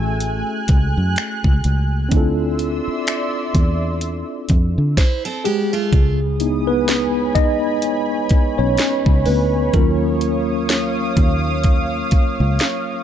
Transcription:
0.00 0.42 A1 medium
0.00 1.59 A3 medium
0.00 2.08 A3 medium
0.00 1.60 C#4 medium
0.00 1.61 E4 medium
0.00 1.62 F#4 medium
0.00 1.63 G#4 medium
0.00 2.08 G#5 medium
0.00 2.09 F#6 medium
0.20 closed hi-hat medium
0.68 0.94 C#2 medium
0.68 kick medium
0.68 closed hi-hat medium
0.97 1.15 F#2 medium
1.16 finger snap loud
1.16 closed hi-hat medium
1.44 1.62 C#2 medium
1.44 kick medium
1.64 2.07 C#2 medium
1.64 closed hi-hat medium
2.09 2.79 D2 loud
2.09 4.92 C4 medium
2.09 4.93 D4 medium
2.09 4.94 E4 medium
2.09 4.95 D5 medium
2.09 4.94 E5 medium
2.09 4.95 C6 medium
2.09 4.95 E6 medium
2.09 kick loud
2.09 closed hi-hat medium
2.15 4.95 F4 medium
2.15 4.96 A4 medium
2.59 closed hi-hat medium
2.88 muted fingered electric bass stroke soft
3.07 finger snap loud
3.07 closed hi-hat medium
3.55 4.22 E2 medium
3.55 kick medium
3.55 closed hi-hat medium
4.01 closed hi-hat medium
4.49 4.75 F2 medium
4.49 kick medium
4.49 closed hi-hat medium
4.78 4.96 D3 loud
4.97 5.24 E4 medium
4.97 5.24 C5 medium
4.97 kick loud
4.97 snare medium
5.25 5.44 C4 medium
5.25 5.44 A4 medium
5.44 6.65 G#3 medium
5.44 5.72 B3 medium
5.44 5.71 G4 medium
5.44 6.71 G#4 medium
5.73 6.18 A3 medium
5.73 6.18 F4 medium
5.92 7.36 C#2 loud
5.92 13.03 C#5 medium
5.92 9.70 G#5 medium
5.92 9.70 B5 medium
5.92 7.81 D#6 medium
5.92 kick loud
5.92 closed hi-hat medium
6.40 6.68 B3 medium
6.40 7.36 D#4 medium
6.40 9.70 E4 medium
6.40 closed hi-hat medium
6.67 7.32 B3 medium
6.67 7.37 B4 loud
6.88 snare loud
6.88 closed hi-hat medium
7.35 8.21 D#2 medium
7.35 8.55 D#4 medium
7.35 8.54 D#5 loud
7.35 kick loud
7.35 closed hi-hat medium
7.82 closed hi-hat medium
8.29 muted fingered electric bass stroke soft
8.29 kick loud
8.29 closed hi-hat medium
8.58 8.77 B1 medium
8.58 9.23 C#4 medium
8.58 9.28 C#5 loud
8.77 snare loud
8.77 closed hi-hat medium
9.06 9.24 C#2 medium
9.06 kick medium
9.26 9.69 D2 medium
9.26 9.49 B3 medium
9.26 9.47 B4 medium
9.26 open hi-hat medium
9.73 11.13 D#2 loud
9.73 11.13 F#3 medium
9.73 11.61 A#3 medium
9.73 11.13 C#4 medium
9.73 11.13 F4 medium
9.73 11.60 A#4 loud
9.73 13.03 F5 medium
9.73 13.03 D#6 medium
9.73 kick loud
9.73 closed hi-hat medium
10.21 closed hi-hat medium
10.69 snare loud
10.69 closed hi-hat medium
11.17 12.02 D#2 medium
11.17 kick loud
11.17 closed hi-hat medium
11.64 kick medium
11.64 closed hi-hat medium
12.11 muted fingered electric bass stroke soft
12.11 kick medium
12.11 closed hi-hat medium
12.40 12.58 C#2 loud
12.59 snare loud
12.59 closed hi-hat medium

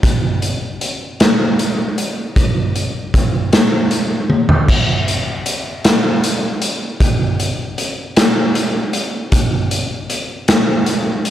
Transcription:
0.03 kick loud
0.03 closed hi-hat medium
0.42 closed hi-hat medium
0.81 closed hi-hat medium
1.20 snare loud
1.20 closed hi-hat medium
1.59 closed hi-hat medium
1.98 closed hi-hat medium
2.36 kick loud
2.36 closed hi-hat medium
2.75 closed hi-hat medium
3.14 kick medium
3.14 closed hi-hat medium
3.53 snare loud
3.53 closed hi-hat medium
3.91 closed hi-hat medium
4.30 high tom medium
4.49 floor tom medium
4.68 kick loud
4.68 crash loud
5.08 closed hi-hat medium
5.46 closed hi-hat medium
5.84 snare loud
5.84 closed hi-hat medium
6.24 closed hi-hat medium
6.62 closed hi-hat medium
7.00 kick loud
7.00 closed hi-hat medium
7.40 closed hi-hat medium
7.78 closed hi-hat medium
8.16 snare loud
8.16 closed hi-hat loud
8.55 closed hi-hat medium
8.93 closed hi-hat medium
9.32 kick loud
9.32 closed hi-hat medium
9.71 closed hi-hat medium
10.10 closed hi-hat medium
10.48 snare loud
10.48 closed hi-hat loud
10.86 closed hi-hat medium
11.25 closed hi-hat medium

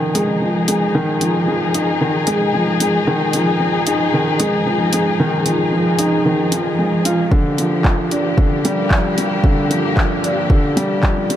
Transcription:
0.00 0.14 D#3 medium
0.00 0.42 F3 medium
0.00 11.36 F3 medium
0.00 1.74 D#4 medium
0.00 7.27 D#4 medium
0.00 7.27 G#4 medium
0.15 0.40 G#3 medium
0.15 closed hi-hat medium
0.42 0.67 F3 medium
0.68 0.93 G#3 medium
0.68 closed hi-hat medium
0.95 1.10 D#3 medium
1.21 1.46 F3 medium
1.21 closed hi-hat medium
1.48 1.73 F3 medium
1.74 1.89 D#4 medium
1.74 closed hi-hat medium
2.01 2.26 D#3 medium
2.27 2.53 G#3 medium
2.27 closed hi-hat medium
2.54 2.79 F3 medium
2.80 3.06 G#3 medium
2.80 closed hi-hat medium
3.07 3.22 D#3 loud
3.33 3.59 F3 medium
3.33 closed hi-hat medium
3.60 3.85 F3 medium
3.87 4.02 D#4 medium
3.87 closed hi-hat medium
4.14 4.39 D#3 medium
4.40 4.65 G#3 medium
4.40 closed hi-hat medium
4.67 4.92 F3 medium
4.93 5.18 G#3 medium
4.93 closed hi-hat medium
5.20 5.35 D#3 medium
5.46 5.71 F3 medium
5.46 closed hi-hat medium
5.72 5.98 F3 medium
5.99 6.14 D#4 medium
5.99 closed hi-hat medium
6.25 6.51 D#3 medium
6.52 6.77 F3 medium
6.52 closed hi-hat medium
6.79 6.94 G#3 medium
7.05 7.20 F4 medium
7.05 closed hi-hat medium
7.31 7.47 D3 medium
7.31 11.36 A#3 medium
7.31 11.36 G4 medium
7.31 kick medium
7.58 7.83 F3 medium
7.58 closed hi-hat medium
7.85 8.10 F3 medium
7.85 kick medium
7.85 clap medium
8.11 8.27 D4 medium
8.11 closed hi-hat medium
8.38 8.64 D3 medium
8.38 kick loud
8.65 8.90 G3 medium
8.65 closed hi-hat medium
8.91 9.16 F3 medium
8.91 kick loud
8.91 clap medium
9.18 9.43 G3 medium
9.18 closed hi-hat medium
9.44 9.59 D3 medium
9.44 kick medium
9.71 9.96 F3 medium
9.71 closed hi-hat medium
9.97 10.23 F3 medium
9.97 kick medium
9.97 clap medium
10.24 10.39 D4 medium
10.24 closed hi-hat medium
10.50 10.76 D3 medium
10.50 kick loud
10.77 11.02 G3 loud
10.77 closed hi-hat medium
11.03 11.29 F3 medium
11.03 kick loud
11.03 clap medium
11.30 11.36 G3 medium
11.30 closed hi-hat medium

